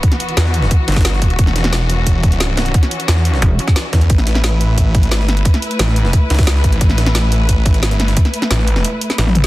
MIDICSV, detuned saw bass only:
0, 0, Header, 1, 2, 480
1, 0, Start_track
1, 0, Tempo, 338983
1, 45, Time_signature, 4, 2, 24, 8
1, 13408, End_track
2, 0, Start_track
2, 0, Title_t, "Detuned saw bass"
2, 0, Program_c, 0, 39
2, 524, Note_on_c, 0, 40, 99
2, 985, Note_off_c, 0, 40, 0
2, 1244, Note_on_c, 0, 31, 101
2, 1945, Note_off_c, 0, 31, 0
2, 1965, Note_on_c, 0, 28, 96
2, 3338, Note_off_c, 0, 28, 0
2, 3338, Note_on_c, 0, 26, 96
2, 3865, Note_off_c, 0, 26, 0
2, 4364, Note_on_c, 0, 40, 101
2, 4825, Note_off_c, 0, 40, 0
2, 5565, Note_on_c, 0, 40, 102
2, 5785, Note_off_c, 0, 40, 0
2, 5805, Note_on_c, 0, 33, 97
2, 7136, Note_off_c, 0, 33, 0
2, 7136, Note_on_c, 0, 32, 97
2, 7518, Note_off_c, 0, 32, 0
2, 7518, Note_on_c, 0, 31, 97
2, 7705, Note_off_c, 0, 31, 0
2, 8204, Note_on_c, 0, 33, 99
2, 8665, Note_off_c, 0, 33, 0
2, 8925, Note_on_c, 0, 37, 100
2, 9626, Note_off_c, 0, 37, 0
2, 9645, Note_on_c, 0, 33, 94
2, 10976, Note_off_c, 0, 33, 0
2, 10976, Note_on_c, 0, 32, 94
2, 11358, Note_off_c, 0, 32, 0
2, 11358, Note_on_c, 0, 31, 94
2, 11545, Note_off_c, 0, 31, 0
2, 12045, Note_on_c, 0, 33, 102
2, 12506, Note_off_c, 0, 33, 0
2, 13004, Note_on_c, 0, 33, 98
2, 13408, Note_off_c, 0, 33, 0
2, 13408, End_track
0, 0, End_of_file